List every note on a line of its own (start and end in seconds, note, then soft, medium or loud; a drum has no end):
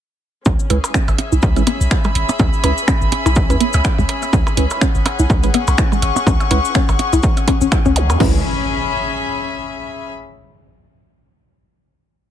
0.45 0.55 C#2 medium
0.45 8.19 C#4 medium
0.45 0.56 C#4 medium
0.45 kick loud
0.45 cabasa medium
0.45 percussion blips soft
0.59 cabasa soft
0.70 0.79 C#2 medium
0.70 0.78 G#3 medium
0.70 0.78 C#4 medium
0.70 0.78 E4 medium
0.70 8.20 G#4 medium
0.70 0.78 B4 loud
0.70 closed hi-hat medium
0.70 percussion blips soft
0.84 cabasa medium
0.84 percussion blips medium
0.92 1.04 C#4 loud
0.92 4.94 E5 medium
0.92 finger snap medium
0.92 kick loud
0.92 cabasa medium
1.08 1.15 G#1 medium
1.08 cabasa soft
1.08 percussion blips medium
1.08 percussion blips soft
1.18 closed hi-hat medium
1.18 percussion blips medium
1.32 1.39 B1 medium
1.32 1.37 E4 medium
1.32 cabasa medium
1.39 5.73 B5 medium
1.39 cabasa medium
1.43 1.58 C#2 medium
1.43 kick loud
1.43 percussion blips medium
1.56 1.63 G#1 medium
1.56 1.62 G#3 medium
1.56 1.62 C#4 medium
1.56 1.62 E4 medium
1.56 1.62 B4 medium
1.56 closed hi-hat soft
1.56 cabasa soft
1.56 percussion blips soft
1.67 1.71 B3 medium
1.67 closed hi-hat medium
1.67 percussion blips medium
1.67 percussion blips soft
1.81 1.87 B1 loud
1.81 cabasa medium
1.91 finger snap medium
1.91 kick loud
1.91 cabasa medium
2.04 2.12 G#3 medium
2.04 cabasa soft
2.04 percussion blips soft
2.04 percussion blips medium
2.15 2.24 G#1 medium
2.15 closed hi-hat medium
2.29 percussion blips medium
2.29 cabasa medium
2.29 percussion blips soft
2.39 2.48 C#2 medium
2.39 2.49 C#4 medium
2.39 kick loud
2.39 cabasa medium
2.39 percussion blips medium
2.53 cabasa soft
2.64 2.73 C#2 medium
2.64 2.71 G#3 medium
2.64 2.71 C#4 medium
2.64 2.71 E4 medium
2.64 2.71 B4 medium
2.64 closed hi-hat medium
2.64 percussion blips medium
2.78 cabasa medium
2.88 2.98 C#4 loud
2.88 finger snap medium
2.88 kick loud
2.88 cabasa medium
2.88 percussion blips soft
3.01 3.08 G#1 medium
3.01 cabasa soft
3.12 closed hi-hat medium
3.12 percussion blips medium
3.26 3.52 B1 medium
3.26 3.31 E4 medium
3.26 cabasa medium
3.26 percussion blips medium
3.35 kick loud
3.35 cabasa medium
3.35 percussion blips soft
3.50 3.57 E2 loud
3.50 3.56 G#3 medium
3.50 3.56 C#4 medium
3.50 3.56 E4 medium
3.50 3.56 B4 medium
3.50 closed hi-hat soft
3.50 cabasa soft
3.50 percussion blips soft
3.60 3.64 B3 medium
3.60 closed hi-hat loud
3.73 3.81 C#2 loud
3.73 cabasa medium
3.73 percussion blips medium
3.85 finger snap medium
3.85 kick loud
3.85 cabasa medium
3.85 percussion blips medium
3.98 4.05 C#2 loud
3.98 4.06 G#3 medium
3.98 percussion blips medium
3.98 cabasa soft
4.09 closed hi-hat medium
4.09 percussion blips soft
4.22 cabasa medium
4.22 percussion blips soft
4.33 4.42 C#2 loud
4.33 4.43 C#4 medium
4.33 kick loud
4.33 cabasa medium
4.47 cabasa soft
4.47 percussion blips medium
4.57 4.66 C#2 medium
4.57 4.65 G#3 medium
4.57 4.65 C#4 medium
4.57 4.65 E4 medium
4.57 4.65 B4 loud
4.57 closed hi-hat medium
4.70 cabasa medium
4.70 percussion blips soft
4.78 4.91 C#4 loud
4.78 8.20 F#5 medium
4.78 finger snap medium
4.78 kick loud
4.78 cabasa medium
4.95 5.02 G#1 medium
4.95 cabasa soft
5.06 closed hi-hat medium
5.06 percussion blips medium
5.19 5.26 B1 loud
5.19 5.24 E4 medium
5.19 cabasa medium
5.30 5.45 C#2 medium
5.30 kick loud
5.30 cabasa medium
5.30 percussion blips soft
5.43 5.50 G#1 medium
5.43 5.49 G#3 medium
5.43 5.49 C#4 medium
5.43 5.49 E4 medium
5.43 5.49 B4 medium
5.43 closed hi-hat soft
5.43 cabasa soft
5.54 5.58 B3 medium
5.54 closed hi-hat loud
5.54 percussion blips medium
5.54 percussion blips soft
5.58 8.20 C#6 medium
5.67 5.75 B1 loud
5.67 cabasa medium
5.67 percussion blips medium
5.78 finger snap medium
5.78 kick loud
5.78 cabasa medium
5.92 5.99 G#3 medium
5.92 cabasa soft
5.92 percussion blips soft
6.02 6.11 G#1 medium
6.02 closed hi-hat medium
6.02 percussion blips soft
6.16 percussion blips medium
6.16 cabasa medium
6.27 6.35 C#2 medium
6.27 6.36 C#4 medium
6.27 kick loud
6.27 cabasa medium
6.27 percussion blips medium
6.40 cabasa soft
6.40 percussion blips medium
6.51 6.60 C#2 medium
6.51 6.58 G#3 medium
6.51 6.58 C#4 medium
6.51 6.58 E4 medium
6.51 6.58 B4 loud
6.51 closed hi-hat medium
6.51 percussion blips soft
6.65 cabasa medium
6.75 6.85 C#4 loud
6.75 finger snap medium
6.75 kick loud
6.75 cabasa medium
6.89 6.96 G#1 medium
6.89 cabasa soft
6.89 percussion blips soft
6.89 percussion blips medium
6.99 closed hi-hat medium
6.99 percussion blips medium
7.13 7.20 B1 medium
7.13 7.18 E4 medium
7.13 cabasa medium
7.13 percussion blips soft
7.23 kick loud
7.23 cabasa medium
7.37 closed hi-hat soft
7.37 cabasa soft
7.37 percussion blips soft
7.48 7.54 C#4 medium
7.48 kick medium
7.48 closed hi-hat loud
7.48 percussion blips medium
7.61 7.68 G#1 medium
7.61 7.69 C#4 medium
7.61 cabasa medium
7.72 finger snap medium
7.72 kick loud
7.72 cabasa medium
7.72 percussion blips medium
7.72 percussion blips soft
7.85 8.11 C#2 medium
7.85 7.91 C#4 loud
7.85 percussion blips medium
7.85 cabasa soft
7.96 closed hi-hat medium
7.96 zap medium
8.10 8.17 E2 medium
8.10 cabasa medium
8.10 percussion blips medium
8.20 8.43 C#2 loud
8.20 8.39 G#3 medium
8.20 8.39 C#4 medium
8.20 8.43 C#4 loud
8.20 10.10 C#4 medium
8.20 8.39 E4 medium
8.20 8.39 B4 medium
8.20 kick loud
8.20 crash medium
8.20 impact medium
8.28 10.10 G#4 medium
8.36 10.10 E5 medium
8.42 10.10 B5 medium